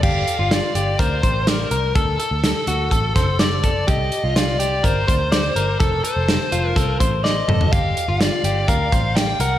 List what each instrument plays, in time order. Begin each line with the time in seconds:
0.03 picked electric bass G1, clean electric guitar G4, lead electric guitar F5, kick, crash
0.28 closed hi-hat
0.39 picked electric bass G1, clean electric guitar F4
0.51 clean electric guitar F4, lead electric guitar D5, snare, closed hi-hat
0.75 picked electric bass G1, clean electric guitar G4, closed hi-hat
0.99 picked electric bass D2, clean electric guitar A#4, lead electric guitar C5, kick, closed hi-hat
1.23 picked electric bass A1, clean electric guitar C5, kick, closed hi-hat
1.47 lead electric guitar A#4, clean electric guitar D5, snare, closed hi-hat
1.71 picked electric bass C2, clean electric guitar A#4, closed hi-hat
1.95 picked electric bass D2, clean electric guitar A4, lead electric guitar A4, kick, closed hi-hat
2.20 clean electric guitar A4, closed hi-hat
2.31 picked electric bass D2
2.44 lead electric guitar A4, snare, closed hi-hat
2.67 picked electric bass D2, clean electric guitar F#4, closed hi-hat
2.91 picked electric bass A1, clean electric guitar A4, kick, closed hi-hat
3.16 picked electric bass F#1, clean electric guitar C5, kick, snare, closed hi-hat
3.39 clean electric guitar D5, lead electric guitar D5, snare, closed hi-hat
3.63 clean electric guitar A4, kick, closed hi-hat
3.87 picked electric bass C2, clean electric guitar G4, lead electric guitar D#5, kick, closed hi-hat
4.12 closed hi-hat
4.24 picked electric bass C2, clean electric guitar F4
4.36 clean electric guitar F4, lead electric guitar D5, snare, closed hi-hat
4.60 clean electric guitar G4, closed hi-hat
4.84 picked electric bass G1, clean electric guitar A#4, lead electric guitar C5, kick, closed hi-hat
5.08 picked electric bass D2, clean electric guitar C5, kick, closed hi-hat
5.32 clean electric guitar D5, snare, closed hi-hat
5.56 picked electric bass G1, clean electric guitar A#4, closed hi-hat
5.80 picked electric bass F1, clean electric guitar A4, lead electric guitar A4, kick, closed hi-hat
6.04 clean electric guitar A4, lead electric guitar C5, closed hi-hat
6.16 picked electric bass F1
6.29 snare, closed hi-hat
6.52 picked electric bass F1, clean electric guitar F4, closed hi-hat
6.69 lead electric guitar A#4
6.76 picked electric bass C2, clean electric guitar A4, kick, closed hi-hat
7.00 picked electric bass A1, clean electric guitar C5, kick, closed hi-hat
7.24 clean electric guitar D5, lead electric guitar D#5, snare
7.48 picked electric bass F1, clean electric guitar A4, mid tom
7.61 floor tom
7.72 picked electric bass G1, clean electric guitar G4, lead electric guitar F5, kick, closed hi-hat
7.97 closed hi-hat
8.08 picked electric bass G1, clean electric guitar F4
8.21 clean electric guitar F4, lead electric guitar D5, snare, closed hi-hat
8.44 picked electric bass G1, clean electric guitar G4, closed hi-hat
8.68 picked electric bass D2, clean electric guitar A#4, lead electric guitar F5, kick, closed hi-hat
8.92 picked electric bass A1, clean electric guitar C5, kick, closed hi-hat
9.16 clean electric guitar D5, lead electric guitar G5, snare, closed hi-hat
9.40 picked electric bass C2, clean electric guitar A#4, lead electric guitar F#5, closed hi-hat